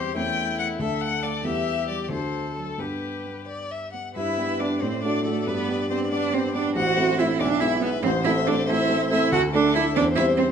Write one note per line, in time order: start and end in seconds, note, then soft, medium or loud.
0.00 0.13 E2 medium
0.00 0.11 G3 medium
0.00 0.14 G3 soft
0.00 0.14 C4 soft
0.00 0.16 G4 medium
0.00 0.15 C5 soft
0.00 0.16 C5 medium
0.15 0.78 E2 soft
0.15 0.78 A3 soft
0.15 0.78 C#4 soft
0.15 0.82 E4 medium
0.15 0.79 A4 soft
0.15 0.58 G5 medium
0.59 0.75 A3 medium
0.59 0.67 F#5 medium
0.79 1.43 D2 soft
0.79 1.43 A3 soft
0.79 1.43 D4 soft
0.79 1.44 A4 medium
0.79 1.43 A4 soft
0.79 1.03 E5 medium
1.01 1.24 F#5 medium
1.23 1.40 A3 medium
1.23 1.47 D5 medium
1.43 2.08 E2 soft
1.43 2.09 G3 soft
1.43 2.09 B3 soft
1.43 2.09 E4 soft
1.43 2.10 G4 medium
1.43 1.88 E5 medium
1.88 2.06 G3 soft
1.88 2.03 D5 medium
2.04 2.12 D5 soft
2.09 2.76 D2 soft
2.09 2.76 A3 soft
2.09 2.77 D4 soft
2.09 2.77 F#4 soft
2.09 2.80 A4 soft
2.09 2.56 C5 soft
2.56 2.74 F#3 soft
2.56 2.81 A4 soft
2.78 4.11 G2 soft
2.78 4.11 B3 soft
2.78 4.12 D4 soft
2.78 3.48 G4 soft
2.78 4.12 G4 soft
2.78 3.43 B4 soft
3.25 3.42 B3 soft
3.47 3.73 D5 soft
3.71 3.92 E5 soft
3.93 4.11 B3 soft
3.93 4.15 F#5 soft
4.15 4.37 G2 medium
4.15 4.61 E4 medium
4.15 4.77 B4 soft
4.15 4.61 E5 medium
4.38 4.58 B3 soft
4.38 4.58 D4 soft
4.38 4.58 G4 soft
4.60 4.80 B3 soft
4.60 4.83 D4 medium
4.60 4.80 D4 soft
4.60 4.80 G4 soft
4.60 4.83 D5 medium
4.81 5.03 A2 medium
4.81 5.03 C4 medium
4.81 5.03 C5 medium
4.81 6.72 D5 medium
5.03 5.23 A3 soft
5.03 5.24 D4 medium
5.03 5.23 D4 soft
5.03 5.24 F#4 soft
5.03 5.24 D5 medium
5.25 5.46 A3 medium
5.25 5.45 A3 soft
5.25 5.45 D4 soft
5.25 5.45 F#4 soft
5.25 5.48 A4 medium
5.46 5.68 G2 medium
5.46 5.89 B3 medium
5.46 5.90 B4 medium
5.69 5.88 B3 soft
5.69 5.88 D4 soft
5.69 5.89 G4 soft
5.90 6.09 B3 soft
5.90 6.11 C4 medium
5.90 6.10 D4 soft
5.90 6.10 G4 soft
5.90 5.98 C5 medium
6.11 6.31 B3 soft
6.11 6.35 D4 medium
6.11 6.31 D4 soft
6.11 6.32 G4 soft
6.11 6.36 D5 medium
6.34 6.53 B3 soft
6.34 6.55 C4 medium
6.34 6.53 D4 soft
6.34 6.53 G4 medium
6.34 6.55 C5 medium
6.55 6.74 B3 soft
6.55 6.76 D4 medium
6.55 6.74 D4 soft
6.55 6.74 G4 medium
6.55 6.63 D5 medium
6.76 6.97 A1 medium
6.76 7.21 F#4 loud
6.76 7.37 C5 medium
6.76 7.18 F#5 medium
6.97 7.16 A3 soft
6.97 7.17 C4 soft
6.97 7.17 E4 medium
7.19 7.38 A3 soft
7.19 7.38 C4 medium
7.19 7.42 E4 medium
7.19 7.38 E4 medium
7.19 7.27 E5 medium
7.40 7.61 B1 medium
7.40 7.62 D4 loud
7.40 7.48 D5 medium
7.40 8.01 E5 medium
7.60 7.81 G#3 medium
7.60 7.81 B3 medium
7.60 7.81 E4 medium
7.60 7.69 E5 medium
7.81 8.02 G#3 soft
7.81 7.89 B3 medium
7.81 8.02 B3 medium
7.81 8.02 E4 medium
7.81 8.04 B4 medium
8.03 8.25 A1 medium
8.03 8.11 C4 loud
8.03 8.25 C5 medium
8.03 9.28 C5 medium
8.24 8.45 A3 medium
8.24 8.45 C4 medium
8.24 8.32 E4 medium
8.24 8.45 A4 medium
8.24 8.49 E5 medium
8.47 8.66 A3 medium
8.47 8.67 C4 medium
8.47 8.55 D4 medium
8.47 8.67 A4 medium
8.47 8.68 D5 medium
8.67 8.87 A3 medium
8.67 8.88 C4 medium
8.67 9.09 E4 loud
8.67 8.88 A4 medium
8.67 9.10 E5 medium
8.89 9.09 A3 medium
8.89 9.09 C4 medium
8.89 9.09 A4 medium
9.11 9.30 A3 medium
9.11 9.31 C4 medium
9.11 9.32 E4 loud
9.11 9.31 A4 medium
9.11 9.32 E5 medium
9.31 9.53 D2 medium
9.31 9.41 F#4 loud
9.31 9.91 A4 medium
9.31 9.40 F#5 medium
9.53 9.73 A3 medium
9.53 9.74 D4 loud
9.53 9.73 D4 medium
9.53 9.73 A4 medium
9.53 9.76 D5 medium
9.74 9.94 A3 medium
9.74 9.94 D4 medium
9.74 9.83 E4 loud
9.74 9.94 A4 medium
9.74 9.95 E5 medium
9.95 10.17 E2 medium
9.95 10.04 D4 loud
9.95 10.52 C5 medium
9.95 10.04 D5 medium
10.16 10.36 G3 medium
10.16 10.37 C4 medium
10.16 10.24 E4 loud
10.16 10.37 C5 medium
10.16 10.25 E5 medium
10.37 10.52 G3 medium
10.37 10.45 C4 medium
10.37 10.52 C4 medium
10.37 10.46 C5 medium
10.37 10.52 C5 medium